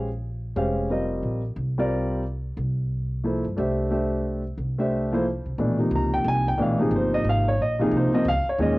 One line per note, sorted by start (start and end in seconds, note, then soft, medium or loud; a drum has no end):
0.00 0.53 A#1 medium
0.56 1.20 F1 medium
0.56 0.89 G#3 medium
0.56 0.89 C#4 medium
0.56 0.89 G4 medium
0.56 0.89 C5 soft
0.56 0.89 F5 medium
0.90 1.40 G3 medium
0.90 1.40 C4 soft
0.90 1.41 F4 soft
0.90 1.41 A#4 soft
0.90 1.41 D#5 medium
1.23 1.54 A#1 medium
1.56 2.53 C2 medium
1.78 2.22 G3 medium
1.78 2.22 C4 medium
1.78 2.22 F4 medium
1.78 2.22 A#4 medium
1.78 2.22 D5 medium
2.57 3.41 C2 medium
3.24 3.43 F3 soft
3.24 3.43 A#3 soft
3.24 3.43 E4 soft
3.24 3.43 A4 soft
3.24 3.43 C5 medium
3.44 3.57 G2 medium
3.57 4.54 C2 medium
3.57 3.89 A3 medium
3.57 3.89 D4 soft
3.57 3.90 G4 medium
3.57 3.90 C5 medium
3.57 3.90 E5 medium
3.90 4.41 A3 medium
3.90 4.41 D4 soft
3.90 4.41 G4 soft
3.90 4.42 C5 medium
3.90 4.41 E5 medium
4.57 5.41 C2 medium
4.78 5.10 A3 medium
4.78 5.10 D4 medium
4.78 5.10 G4 soft
4.78 5.11 C5 medium
4.78 5.11 E5 medium
5.12 5.24 F3 medium
5.12 5.24 A#3 medium
5.12 5.24 E4 medium
5.12 5.24 A4 soft
5.12 5.25 C5 medium
5.46 5.58 C2 medium
5.58 5.90 A#1 medium
5.58 5.77 B2 medium
5.58 5.77 E3 medium
5.58 5.78 A3 medium
5.58 5.78 D4 medium
5.79 6.51 C3 soft
5.79 6.51 F3 soft
5.79 6.52 A#3 soft
5.79 6.52 D#4 medium
5.91 6.24 C#2 medium
5.96 6.14 A#5 medium
6.14 6.26 G5 medium
6.24 6.57 C2 medium
6.24 6.47 G#5 medium
6.48 6.60 G5 medium
6.57 6.90 A#1 medium
6.57 6.77 B2 medium
6.57 6.77 E3 medium
6.57 6.78 A3 medium
6.57 6.78 D4 medium
6.62 6.80 F5 medium
6.78 7.51 C3 medium
6.78 7.51 F3 medium
6.78 7.51 A#3 medium
6.78 7.51 D#4 medium
6.78 6.93 G#4 medium
6.91 7.24 G1 medium
6.96 7.14 C5 medium
7.14 7.26 D#5 medium
7.24 7.57 G#1 medium
7.29 7.47 F5 medium
7.48 7.60 C#5 medium
7.58 7.91 A#1 medium
7.58 7.80 D#5 medium
7.79 8.11 C3 medium
7.79 8.11 F3 medium
7.79 8.11 A#3 medium
7.79 8.12 D#4 medium
7.79 7.93 G#4 medium
7.91 8.11 C2 medium
7.97 8.15 C5 medium
8.13 8.25 C3 medium
8.13 8.25 F3 medium
8.13 8.25 A#3 medium
8.13 8.25 C4 medium
8.13 8.26 D#5 medium
8.13 muted upright bass stroke soft
8.25 8.44 C#2 medium
8.25 8.47 F5 loud
8.46 8.60 C#5 medium
8.46 muted upright bass stroke soft
8.58 8.79 D#2 medium
8.58 8.79 A#2 medium
8.58 8.79 D#3 medium
8.58 8.79 G#3 medium
8.58 8.79 C#4 medium
8.58 8.79 D#5 medium